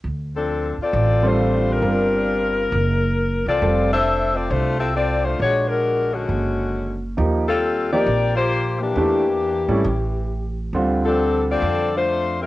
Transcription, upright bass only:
X:1
M:4/4
L:1/8
Q:"Swing" 1/4=135
K:Dm
V:1 name="Upright bass" clef=bass
D,,3 z A,,,4 | G,,,4 ^F,,,3 C,, | F,,,4 C,,4 | B,,,4 ^F,,,4 |
_E,,4 B,,,4 | E,,3 ^G,,, A,,,4 | D,,4 F,,4 |]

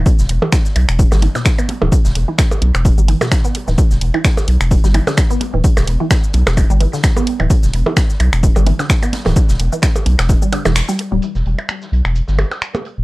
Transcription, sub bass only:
X:1
M:4/4
L:1/16
Q:"Swing 16ths" 1/4=129
K:Em
V:1 name="Sub bass" clef=bass
z E,,, E,,, z3 B,,, E,,, z G,,, z4 z D,,, | z E,,, E,,, z3 B,,, E,,, z G,,, z4 z D,,, | z E,,, E,,, z3 B,,, E,,, z G,,, z4 z D,,, | z E,,, E,,, z3 B,,, E,,, z G,,, z4 z D,,, |
z E,,, E,,, z3 B,,, E,,, z G,,, z4 z D,,, | z E,,, E,,, z3 B,,, E,,, z3 E,,, z3 D,,, | z E,,, E,,, z3 B,,, E,,, z G,,, z4 z D,,, |]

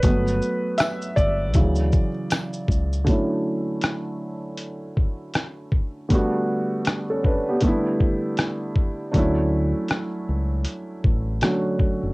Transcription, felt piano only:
X:1
M:4/4
L:1/16
Q:"Swing 16ths" 1/4=79
K:D
V:1 name="Felt piano"
B2 z2 e2 d8 z2 | z16 | z4 z [CA] [DB] [B,G]2 z6 z | z16 |]
V:2 name="Felt piano"
[F,A,B,]6 z2 [C,E,F,]2 z6 | [D,F,A,CE]16 | [D,G,A,B,F]8 [D,G,A,B,E]8 | [F,A,CDE]12 [D,F,A,CF]4 |]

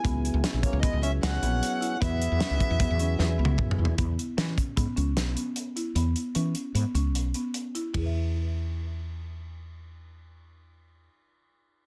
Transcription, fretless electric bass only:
X:1
M:5/4
L:1/16
Q:1/4=152
K:E
V:1 name="Fretless electric bass" clef=bass
C,,3 C,, z ^A,,, z C,,2 C,,3 C,,2 A,,,2 z4 | E,,3 E,, z C,, z E,,2 E,,3 E,,2 C,,2 F,,2 E,,2 | E,,2 z2 E,2 z2 G,, z C,,2 B,,,2 z6 | E,,2 z2 E,2 z2 G,, z C,,2 B,,,2 z6 |
E,,16- E,,4- | E,,16- E,,4 |]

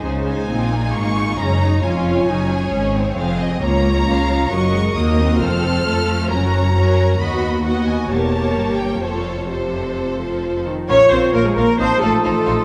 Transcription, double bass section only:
X:1
M:4/4
L:1/8
Q:1/4=134
K:Db
V:1 name="Double bass section" clef=bass
D,,2 B,,,2 A,,,2 G,,,2 | F,,,2 G,,,2 A,,,2 F,,,2 | [K:Bbm] D,,2 D,,2 G,,,2 E,,2 | F,,,2 F,,2 G,,,2 G,,2 |
^D,,4 =E,,,2 =G,,,2 | F,,,6- F,,, z | B,,, B,,, B,,, B,,, =A,,, A,,, A,,, A,,, |]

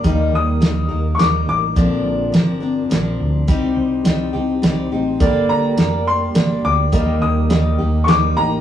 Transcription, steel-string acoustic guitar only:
X:1
M:3/4
L:1/8
Q:1/4=104
K:Eblyd
V:1 name="Steel-string acoustic guitar"
[E,G,B,EB]2 [G,B,EB] [B,EB] [G,B,EB]2 | [B,,D,F,CDB]2 [F,CDB] [F,CDB] [F,CDB]2 | [C,G,CEG]2 [G,CEG] [CEG] [G,CEG] [CEG] | [G,,D,G,B,DG]2 [G,B,DG]2 [G,B,DG]2 |
[E,G,B,EG]2 [G,B,EG] [B,EG] [G,B,EG] [B,EG] |]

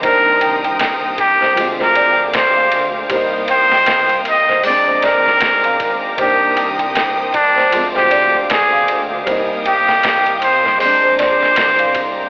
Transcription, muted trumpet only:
X:1
M:4/4
L:1/16
Q:"Swing 16ths" 1/4=78
K:Cm
V:1 name="Muted trumpet"
B3 z3 G3 B3 c3 z | z2 c4 e2 d2 B4- B z | G3 z3 D3 G3 A3 z | z2 G4 c2 c2 c4- c z |]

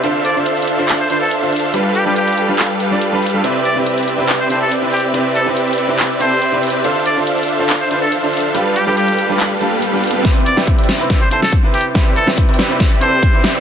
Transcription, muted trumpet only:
X:1
M:4/4
L:1/16
Q:1/4=141
K:C
V:1 name="Muted trumpet"
z2 d z6 c c A z4 | z2 G G G3 z8 z | z2 d z6 c c A z2 G z | z2 A z6 z c4 z2 |
z2 d z6 c c A z4 | z2 G G G3 z8 z | z2 d z6 c c A z2 G z | z2 A z6 z c4 z2 |]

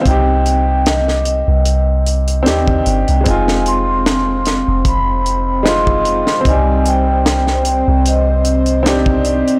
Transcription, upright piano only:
X:1
M:4/4
L:1/8
Q:"Swing 16ths" 1/4=75
K:Cm
V:1 name="Upright piano"
[CEG]6 [CDEG]2 | [A,CEF]6 [A,CEF]2 | [G,CE]6 [CDEG]2 |]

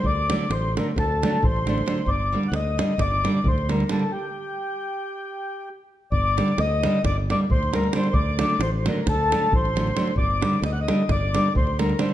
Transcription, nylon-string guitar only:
X:1
M:9/8
L:1/8
Q:3/8=89
K:Gm
V:1 name="Nylon-string guitar" clef=bass
z [D,^F,A,D] z [D,F,A,D] z [D,F,A,D] z [D,F,A,D] [D,F,A,D] | z [D,G,B,D] z [D,G,B,D] z [D,G,B,D] z [D,G,B,D] [D,G,B,D] | z8 z | z [D,G,B,D] z [D,G,B,D] z [D,G,B,D] z [D,G,B,D] [D,G,B,D] |
z [D,^F,A,D] z [D,F,A,D] z [D,F,A,D] z [D,F,A,D] [D,F,A,D] | z [D,G,B,D] z [D,G,B,D] z [D,G,B,D] z [D,G,B,D] [D,G,B,D] |]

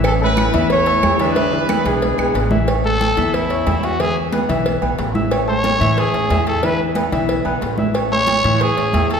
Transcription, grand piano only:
X:1
M:4/4
L:1/8
Q:1/4=182
K:A
V:1 name="Grand piano"
[E,Ee] [A,Ac]2 [E,Ee]2 [A,Ac]2 [E,Ee] | [E,Ee] [E,Ee]2 [G,GB]2 [G,GB] [G,GB] [E,Ee] | [Ccc'] [A,Aa]2 [E,Ee]2 [Ccc'] [Eee']2 | [E,Ee]2 [B,Bb] [E,Ee]2 [B,Bb]2 [Eee'] |
[Ccc'] [A,Aa]2 [E,Ee]2 [Ccc'] [Eee']2 | [E,Ee]2 [B,Bb] [E,Ee]2 [B,Bb]2 [Eee'] | [Ccc'] [A,Aa]2 [E,Ee]2 [Ccc'] [Eee']2 |]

